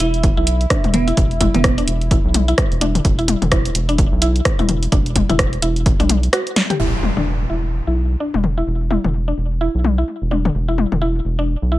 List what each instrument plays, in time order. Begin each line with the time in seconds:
Already playing: synth texture E4
0.00 analog synth bass E1, fm electric piano E4, closed hi-hat
0.14 closed hi-hat
0.23 kick, closed hi-hat
0.37 analog synth bass B1, synth arpeggio sound E4
0.47 closed hi-hat
0.61 closed hi-hat
0.70 synth arpeggio sound D4, kick, cross-stick, closed hi-hat
0.84 analog synth bass E1, closed hi-hat, high tom
0.94 fm electric piano B3, closed hi-hat, mid tom
1.08 synth arpeggio sound E4, closed hi-hat
1.17 analog synth bass E1, kick, closed hi-hat
1.31 closed hi-hat
1.41 synth arpeggio sound E4, kick, closed hi-hat, high tom
1.54 analog synth bass E1, fm electric piano B3, closed hi-hat, mid tom
1.64 kick, cross-stick, closed hi-hat
1.78 synth arpeggio sound D4, closed hi-hat
1.88 analog synth bass E1, closed hi-hat
2.01 closed hi-hat
2.11 synth arpeggio sound E4, kick, closed hi-hat
2.25 analog synth bass B1
2.34 closed hi-hat, high tom
2.48 synth arpeggio sound E4, closed hi-hat
2.58 kick, cross-stick, closed hi-hat
2.72 analog synth bass E1, closed hi-hat
2.81 synth arpeggio sound D4, closed hi-hat, high tom
2.95 closed hi-hat, mid tom
3.05 analog synth bass E1, kick, closed hi-hat
3.19 synth arpeggio sound E4, closed hi-hat
3.28 closed hi-hat, high tom
3.42 analog synth bass E1, closed hi-hat, mid tom
3.51 synth arpeggio sound E4, kick, cross-stick, closed hi-hat
3.65 closed hi-hat
3.75 analog synth bass E1, closed hi-hat
3.89 synth arpeggio sound D4, closed hi-hat
3.98 kick, closed hi-hat
4.12 analog synth bass B1
4.22 synth arpeggio sound E4, closed hi-hat
4.36 closed hi-hat
4.45 kick, cross-stick, closed hi-hat
4.59 analog synth bass E1, synth arpeggio sound E4, closed hi-hat, high tom
4.69 closed hi-hat, mid tom
4.83 closed hi-hat
4.92 analog synth bass E1, synth arpeggio sound D4, kick, closed hi-hat
5.06 closed hi-hat
5.16 kick, closed hi-hat, high tom
5.29 analog synth bass E1, synth arpeggio sound E4, closed hi-hat, mid tom
5.39 kick, cross-stick, closed hi-hat
5.53 closed hi-hat
5.62 analog synth bass E1, synth arpeggio sound E4, closed hi-hat
5.76 closed hi-hat
5.86 kick, closed hi-hat
6.00 analog synth bass B1, synth arpeggio sound D4, closed hi-hat, high tom
6.09 closed hi-hat, high tom
6.23 closed hi-hat
6.33 synth arpeggio sound F#4, cross-stick, closed hi-hat
6.47 closed hi-hat
6.56 snare, closed hi-hat, high tom
6.70 synth arpeggio sound G4, closed hi-hat, mid tom
6.80 analog synth bass E1, synth arpeggio sound E4, impact
7.03 high tom
7.17 analog synth bass E1, synth arpeggio sound D4, mid tom
7.50 analog synth bass E1, synth arpeggio sound E4
7.87 analog synth bass B1, synth arpeggio sound E4
8.20 synth arpeggio sound D4
8.34 analog synth bass E1, high tom
8.44 mid tom
8.58 synth arpeggio sound E4
8.67 analog synth bass E1
8.90 synth arpeggio sound E4, high tom
9.04 analog synth bass E1, mid tom
9.28 synth arpeggio sound D4
9.38 analog synth bass E1
9.61 synth arpeggio sound E4
9.75 analog synth bass B1
9.84 high tom
9.98 synth arpeggio sound E4
10.22 analog synth bass E1
10.31 synth arpeggio sound D4, high tom
10.45 mid tom
10.55 analog synth bass E1
10.68 synth arpeggio sound E4
10.78 high tom
10.92 analog synth bass E1, mid tom
11.02 synth arpeggio sound E4
11.25 analog synth bass E1
11.39 synth arpeggio sound D4
11.62 analog synth bass B1
11.72 synth arpeggio sound E4